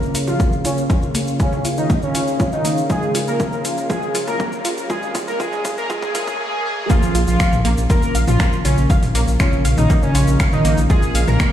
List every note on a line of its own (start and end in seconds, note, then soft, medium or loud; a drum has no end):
0.00 6.36 C#3 medium
0.00 0.16 A#3 medium
0.00 6.36 A#3 medium
0.00 6.36 F4 medium
0.00 6.40 G#4 medium
0.00 0.16 A#4 loud
0.00 6.40 C#5 medium
0.00 6.40 F5 medium
0.00 riser medium
0.00 shaker soft
0.15 0.24 A#1 medium
0.15 0.27 F4 medium
0.15 open hi-hat loud
0.15 shaker medium
0.27 0.37 A#1 medium
0.27 0.54 F3 loud
0.27 0.54 F4 loud
0.27 mid tom medium
0.27 shaker soft
0.40 0.45 A#3 medium
0.40 kick loud
0.40 shaker soft
0.53 shaker soft
0.65 0.74 A#1 medium
0.65 0.83 C#3 medium
0.65 0.83 C#4 medium
0.65 0.73 F4 medium
0.65 open hi-hat loud
0.65 shaker medium
0.78 0.87 A#1 medium
0.78 shaker soft
0.90 1.02 F4 medium
0.90 kick loud
0.90 mid tom medium
0.90 shaker soft
1.02 shaker soft
1.15 1.24 A#1 medium
1.15 1.20 A#3 medium
1.15 open hi-hat loud
1.15 shaker medium
1.27 1.37 A#1 medium
1.27 shaker soft
1.40 1.66 C#3 loud
1.40 1.66 C#4 medium
1.40 1.48 F4 medium
1.40 kick loud
1.40 shaker soft
1.53 1.62 A#1 medium
1.53 mid tom medium
1.53 shaker soft
1.65 1.74 A#1 medium
1.65 1.77 F4 medium
1.65 open hi-hat loud
1.65 shaker medium
1.77 1.87 A#1 medium
1.77 1.95 D#3 medium
1.77 1.95 D#4 medium
1.77 shaker soft
1.90 1.95 A#3 medium
1.90 kick loud
1.90 shaker soft
2.02 2.38 C#3 loud
2.02 2.38 C#4 medium
2.02 shaker soft
2.15 2.24 A#1 medium
2.15 2.23 F4 medium
2.15 open hi-hat loud
2.15 shaker medium
2.27 2.37 A#1 medium
2.27 shaker soft
2.40 2.52 F4 medium
2.40 kick loud
2.40 shaker soft
2.52 2.79 D#3 loud
2.52 2.79 D#4 medium
2.52 shaker soft
2.65 2.74 A#1 medium
2.65 2.70 A#3 medium
2.65 open hi-hat loud
2.65 shaker medium
2.77 2.87 A#1 medium
2.77 shaker soft
2.90 3.16 G#3 medium
2.90 2.98 F4 medium
2.90 3.16 G#4 medium
2.90 kick loud
2.90 mid tom medium
2.90 shaker soft
3.03 shaker soft
3.15 3.24 A#1 medium
3.15 3.27 F4 medium
3.15 open hi-hat loud
3.15 shaker medium
3.27 3.37 A#1 medium
3.27 3.54 A#3 medium
3.27 3.54 A#4 medium
3.27 shaker soft
3.40 3.45 A#3 medium
3.40 kick loud
3.40 shaker soft
3.52 3.62 A#1 medium
3.52 shaker soft
3.65 3.74 A#1 medium
3.65 3.73 F4 medium
3.65 open hi-hat loud
3.65 shaker medium
3.77 3.87 A#1 medium
3.77 shaker soft
3.90 4.16 G#3 medium
3.90 3.98 F4 medium
3.90 4.16 G#4 loud
3.90 kick loud
3.90 shaker soft
4.03 shaker soft
4.15 4.24 A#1 medium
4.15 4.27 F4 medium
4.15 open hi-hat loud
4.15 shaker medium
4.27 4.37 A#1 medium
4.27 4.54 A#3 medium
4.27 4.54 A#4 loud
4.27 mid tom medium
4.27 shaker soft
4.40 4.45 A#3 medium
4.40 kick loud
4.40 shaker soft
4.53 shaker soft
4.65 4.74 A#1 medium
4.65 4.73 F4 medium
4.65 open hi-hat loud
4.65 shaker medium
4.77 4.87 A#1 medium
4.77 shaker soft
4.90 5.16 G#3 medium
4.90 4.98 F4 medium
4.90 5.16 G#4 loud
4.90 kick loud
4.90 mid tom medium
4.90 shaker soft
5.03 shaker soft
5.15 5.24 A#1 loud
5.15 5.27 F4 medium
5.15 kick loud
5.15 open hi-hat loud
5.15 shaker medium
5.27 5.37 A#1 medium
5.27 5.38 A#3 medium
5.27 5.38 A#4 medium
5.27 shaker soft
5.40 5.66 G#3 loud
5.40 5.48 F4 medium
5.40 5.66 G#4 loud
5.40 kick loud
5.40 shaker soft
5.52 5.62 A#1 medium
5.52 mid tom medium
5.52 shaker soft
5.65 5.77 F4 medium
5.65 kick loud
5.65 open hi-hat loud
5.65 shaker medium
5.77 5.87 A#1 medium
5.77 5.88 A#3 loud
5.77 5.88 A#4 medium
5.77 shaker soft
5.90 6.13 G#3 loud
5.90 5.98 F4 medium
5.90 6.13 G#4 loud
5.90 kick loud
5.90 swell medium
5.90 shaker soft
6.02 kick loud
6.02 shaker soft
6.15 6.24 A#1 loud
6.15 6.38 G#3 loud
6.15 6.23 F4 medium
6.15 6.38 G#4 loud
6.15 kick loud
6.15 open hi-hat loud
6.15 shaker medium
6.27 6.37 A#1 medium
6.27 kick loud
6.27 shaker soft
6.40 6.63 G#4 loud
6.65 6.88 G#4 loud
6.90 11.52 C#3 medium
6.90 7.16 F3 loud
6.90 11.52 A#3 medium
6.90 6.95 A#3 loud
6.90 11.52 F4 medium
6.90 7.16 F4 loud
6.90 kick loud
6.90 shaker medium
7.03 shaker soft
7.15 7.24 A#1 medium
7.15 7.23 F4 medium
7.15 open hi-hat loud
7.15 shaker medium
7.27 7.37 A#1 medium
7.27 7.54 F3 medium
7.27 7.54 F4 loud
7.27 shaker soft
7.40 7.52 F5 medium
7.40 finger snap loud
7.40 kick loud
7.40 shaker medium
7.53 7.62 A#1 medium
7.53 mid tom medium
7.53 shaker soft
7.65 7.74 A#1 loud
7.65 7.70 A#3 loud
7.65 open hi-hat loud
7.65 shaker medium
7.78 7.87 A#1 medium
7.78 shaker soft
7.90 8.16 A#3 medium
7.90 7.98 F4 medium
7.90 8.16 A#4 loud
7.90 kick loud
7.90 shaker medium
8.03 shaker soft
8.15 8.24 A#1 medium
8.15 8.27 F5 medium
8.15 open hi-hat loud
8.15 shaker medium
8.28 8.37 A#1 medium
8.28 8.54 F3 loud
8.28 8.54 F4 loud
8.28 mid tom medium
8.28 shaker soft
8.40 8.45 A#3 loud
8.40 finger snap loud
8.40 kick loud
8.40 shaker medium
8.53 shaker soft
8.65 8.74 A#1 medium
8.65 8.83 C#3 medium
8.65 8.83 C#4 medium
8.65 8.73 F4 medium
8.65 open hi-hat loud
8.65 shaker medium
8.78 8.87 A#1 medium
8.78 shaker soft
8.90 9.02 F5 medium
8.90 kick loud
8.90 shaker medium
9.03 mid tom medium
9.03 open hi-hat medium
9.03 shaker soft
9.15 9.24 A#1 loud
9.15 9.20 A#3 loud
9.15 open hi-hat loud
9.15 shaker medium
9.27 9.37 A#1 medium
9.27 shaker soft
9.40 9.66 C#3 loud
9.40 9.66 C#4 loud
9.40 9.48 F4 medium
9.40 finger snap loud
9.40 kick loud
9.40 shaker medium
9.52 9.62 A#1 medium
9.52 shaker soft
9.65 9.74 A#1 medium
9.65 9.77 F5 medium
9.65 open hi-hat loud
9.65 shaker medium
9.77 9.87 A#1 medium
9.77 9.95 D#3 medium
9.77 9.95 D#4 medium
9.77 mid tom medium
9.77 shaker soft
9.90 9.95 A#3 loud
9.90 kick loud
9.90 shaker medium
10.03 10.38 C#3 loud
10.03 10.38 C#4 loud
10.03 shaker soft
10.15 10.24 A#1 medium
10.15 10.23 F4 medium
10.15 open hi-hat loud
10.15 shaker medium
10.27 10.37 A#1 medium
10.27 shaker soft
10.40 10.52 F5 medium
10.40 finger snap loud
10.40 kick loud
10.40 shaker medium
10.53 10.79 D#3 medium
10.53 10.79 D#4 medium
10.53 mid tom medium
10.53 shaker soft
10.65 10.74 A#1 medium
10.65 10.70 A#3 loud
10.65 open hi-hat loud
10.65 shaker medium
10.77 10.87 A#1 medium
10.77 shaker soft
10.90 11.16 G#3 loud
10.90 10.98 F4 medium
10.90 11.16 G#4 loud
10.90 kick loud
10.90 shaker medium
11.03 shaker soft
11.15 11.24 A#1 loud
11.15 11.27 F5 medium
11.15 open hi-hat loud
11.15 shaker medium
11.27 11.37 A#1 medium
11.27 11.52 A#3 medium
11.27 11.52 A#4 loud
11.27 mid tom medium
11.27 shaker soft
11.40 11.45 A#3 loud
11.40 finger snap loud
11.40 kick loud
11.40 shaker medium